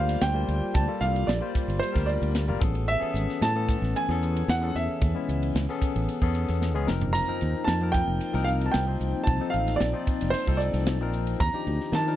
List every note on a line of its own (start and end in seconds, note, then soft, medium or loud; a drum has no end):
0.00 0.16 D2 loud
0.00 0.32 G3 medium
0.00 2.57 G3 medium
0.00 0.32 A#3 medium
0.00 0.33 F4 medium
0.00 2.57 F4 medium
0.00 2.58 G4 medium
0.00 0.33 C5 medium
0.00 2.58 D5 medium
0.00 0.23 F5 medium
0.09 snare soft
0.09 ride medium
0.21 0.44 D2 medium
0.21 0.77 G5 loud
0.21 snare loud
0.21 hi-hat pedal medium
0.21 ride medium
0.34 0.85 G3 medium
0.34 0.85 A#3 medium
0.34 0.86 F4 medium
0.34 0.86 C5 medium
0.48 0.60 D2 medium
0.48 hi-hat pedal medium
0.48 ride medium
0.63 muted fretless electric bass stroke soft
0.74 0.86 D2 loud
0.74 1.02 A5 medium
0.74 kick loud
0.74 hi-hat pedal medium
0.74 ride medium
0.88 1.38 G3 medium
0.88 1.39 A#3 medium
0.88 1.39 F4 medium
0.88 1.39 A4 medium
1.01 1.24 C2 medium
1.01 1.29 F5 medium
1.01 hi-hat pedal medium
1.01 ride medium
1.16 ride medium
1.27 1.40 A#1 medium
1.27 1.77 D5 medium
1.27 snare medium
1.27 hi-hat pedal medium
1.27 ride medium
1.41 1.91 G3 medium
1.41 1.92 A#3 medium
1.41 1.92 F4 medium
1.41 1.92 C5 medium
1.55 muted fretless electric bass stroke soft
1.55 kick medium
1.55 hi-hat pedal medium
1.55 ride medium
1.68 1.79 G1 medium
1.68 ride medium
1.79 2.08 C5 medium
1.79 hi-hat pedal medium
1.79 ride medium
1.92 2.18 D2 medium
1.92 2.44 G3 medium
1.92 2.45 A#3 medium
1.92 2.45 F4 medium
1.92 2.45 A#4 medium
1.92 kick medium
1.97 snare soft
2.06 2.57 D5 medium
2.06 hi-hat pedal medium
2.06 ride medium
2.22 2.50 D2 medium
2.22 ride medium
2.35 snare loud
2.35 hi-hat pedal medium
2.35 ride medium
2.48 2.59 G1 medium
2.48 2.61 G3 medium
2.48 2.62 A#3 medium
2.48 2.62 F4 medium
2.48 2.62 A#4 medium
2.60 2.96 A1 medium
2.60 6.84 E3 medium
2.60 2.99 B3 medium
2.60 2.99 C#4 medium
2.60 6.84 C#4 medium
2.60 2.99 G#4 medium
2.60 2.99 A4 medium
2.60 kick loud
2.60 hi-hat pedal medium
2.60 ride medium
2.75 ride medium
2.88 3.38 E5 loud
2.88 hi-hat pedal medium
2.88 ride medium
3.00 3.52 B3 medium
3.00 3.52 C#4 medium
3.00 3.51 G#4 medium
3.00 3.52 A4 medium
3.00 muted fretless electric bass stroke soft
3.14 3.26 G#1 medium
3.14 hi-hat pedal medium
3.14 ride medium
3.29 snare soft
3.41 3.75 A2 medium
3.41 3.97 A5 loud
3.41 snare medium
3.41 hi-hat pedal medium
3.41 ride medium
3.55 4.06 A3 medium
3.55 4.06 B3 medium
3.55 4.06 C#4 medium
3.55 4.06 A4 medium
3.69 kick medium
3.69 hi-hat pedal medium
3.69 ride medium
3.82 3.93 A1 medium
3.82 snare soft
3.96 4.51 G#5 medium
3.96 hi-hat pedal medium
3.96 ride medium
4.09 4.42 E2 medium
4.09 4.59 B3 medium
4.09 4.60 C#4 medium
4.09 4.59 G#4 medium
4.09 4.60 A4 medium
4.09 snare soft
4.23 hi-hat pedal medium
4.23 ride soft
4.36 ride medium
4.48 4.71 E2 loud
4.48 4.74 F#5 loud
4.48 snare loud
4.48 hi-hat pedal medium
4.48 ride medium
4.62 5.13 B3 medium
4.62 5.13 C#4 medium
4.62 5.12 G#4 medium
4.62 5.13 A4 medium
4.74 4.87 E2 medium
4.74 6.85 B3 medium
4.74 5.51 E5 medium
4.74 hi-hat pedal medium
4.74 ride medium
4.88 muted fretless electric bass stroke soft
5.02 5.13 E2 loud
5.02 kick loud
5.02 hi-hat pedal medium
5.02 ride medium
5.14 5.65 G#3 medium
5.14 5.65 B3 medium
5.14 5.65 C#4 medium
5.14 5.66 E4 medium
5.29 5.51 C#2 medium
5.29 hi-hat pedal medium
5.29 ride medium
5.43 ride medium
5.55 5.66 C#2 medium
5.55 snare loud
5.55 hi-hat pedal medium
5.55 ride medium
5.69 6.19 B3 medium
5.69 6.20 C#4 medium
5.69 6.19 G#4 medium
5.69 6.20 A4 medium
5.69 snare soft
5.82 muted fretless electric bass stroke soft
5.82 kick medium
5.82 hi-hat pedal medium
5.82 ride medium
5.96 6.07 A1 medium
5.96 ride medium
6.09 hi-hat pedal medium
6.09 ride medium
6.22 6.44 E2 medium
6.22 6.72 B3 medium
6.22 6.73 C#4 medium
6.22 6.72 G#4 medium
6.22 6.73 A4 loud
6.22 kick medium
6.35 hi-hat pedal medium
6.35 ride medium
6.48 6.77 E2 medium
6.48 snare soft
6.48 ride medium
6.61 snare medium
6.61 hi-hat pedal medium
6.74 6.87 C#2 medium
6.74 6.88 G#3 medium
6.74 6.88 B3 medium
6.74 6.88 C#4 medium
6.74 6.88 G#4 loud
6.86 7.22 F1 medium
6.86 7.25 F3 medium
6.86 11.37 F3 medium
6.86 11.37 A#3 medium
6.86 7.25 C4 medium
6.86 11.37 C4 medium
6.86 7.26 D#4 medium
6.86 11.37 D#4 medium
6.86 7.26 A#4 medium
6.86 snare medium
6.86 hi-hat pedal medium
7.01 floor tom medium
7.13 7.69 A#5 loud
7.13 hi-hat pedal medium
7.13 ride medium
7.28 7.78 F3 medium
7.28 7.78 C4 medium
7.28 7.79 D#4 medium
7.28 7.79 A#4 medium
7.28 muted fretless electric bass stroke soft
7.41 7.53 D#2 medium
7.41 hi-hat pedal medium
7.41 ride medium
7.64 8.01 F2 medium
7.64 7.94 A5 medium
7.64 snare loud
7.64 hi-hat pedal medium
7.64 ride medium
7.81 8.32 F3 medium
7.81 8.32 C4 medium
7.81 8.32 D#4 medium
7.81 8.33 A#4 medium
7.92 8.43 G5 loud
7.92 kick medium
7.92 hi-hat pedal medium
7.92 ride medium
8.08 8.19 F1 medium
8.21 hi-hat pedal medium
8.21 ride medium
8.33 8.68 C2 medium
8.33 8.84 F3 medium
8.33 8.84 C4 medium
8.33 8.85 D#4 medium
8.33 8.85 A#4 medium
8.33 snare soft
8.44 8.49 F5 medium
8.44 hi-hat pedal medium
8.44 ride soft
8.61 ride medium
8.66 8.74 A5 medium
8.72 8.97 C2 loud
8.72 9.28 G5 medium
8.72 snare loud
8.72 hi-hat pedal medium
8.72 ride medium
8.86 9.37 F3 medium
8.86 9.38 C4 medium
8.86 9.38 D#4 medium
8.86 9.38 C5 medium
9.01 9.12 C2 medium
9.01 hi-hat pedal medium
9.01 ride medium
9.14 muted fretless electric bass stroke soft
9.24 9.39 C2 loud
9.24 9.50 A5 medium
9.24 kick loud
9.24 hi-hat pedal medium
9.24 ride medium
9.40 9.91 F3 medium
9.40 9.91 C4 medium
9.40 9.91 D#4 medium
9.40 9.92 A4 medium
9.50 9.76 A1 medium
9.50 9.80 F5 medium
9.50 hi-hat pedal medium
9.50 ride medium
9.68 snare soft
9.68 ride medium
9.76 10.34 D5 medium
9.80 9.92 A#1 medium
9.80 snare loud
9.80 hi-hat pedal medium
9.80 ride medium
9.93 10.44 F3 medium
9.93 10.44 C4 medium
9.93 10.44 D#4 medium
9.93 10.45 F4 medium
10.07 muted fretless electric bass stroke soft
10.07 kick medium
10.07 hi-hat pedal medium
10.07 ride medium
10.21 10.33 F1 medium
10.21 snare soft
10.21 ride medium
10.30 10.57 C5 medium
10.30 hi-hat pedal medium
10.30 ride medium
10.46 10.70 C2 medium
10.46 10.97 F3 medium
10.46 10.98 C4 medium
10.46 10.98 D#4 medium
10.46 10.98 A4 medium
10.46 kick medium
10.57 11.08 D5 medium
10.57 hi-hat pedal medium
10.57 ride medium
10.74 11.01 C2 medium
10.74 snare soft
10.74 ride medium
10.87 snare loud
10.87 hi-hat pedal medium
10.87 ride medium
11.01 11.34 A#1 medium
11.01 11.40 F3 medium
11.01 11.41 C4 medium
11.01 11.41 D#4 medium
11.01 11.41 A#4 medium
11.13 hi-hat pedal medium
11.13 ride medium
11.27 ride medium
11.40 11.52 D#2 loud
11.40 12.16 D#3 medium
11.40 12.16 F4 medium
11.40 12.16 G4 loud
11.40 11.95 A#5 loud
11.40 kick loud
11.40 hi-hat pedal medium
11.40 ride medium
11.53 12.04 F3 medium
11.53 12.04 D4 medium
11.53 12.04 D#4 medium
11.53 12.05 G4 medium
11.53 muted fretless electric bass stroke soft
11.67 11.78 D2 medium
11.67 hi-hat pedal medium
11.67 ride medium
11.80 snare soft
11.92 12.16 D#3 medium
11.92 12.16 A5 loud
11.92 snare loud
11.92 hi-hat pedal medium
11.92 ride medium
12.07 12.16 F3 medium
12.07 12.16 D4 medium
12.07 12.16 D#4 medium
12.07 12.16 A#4 medium
12.07 snare soft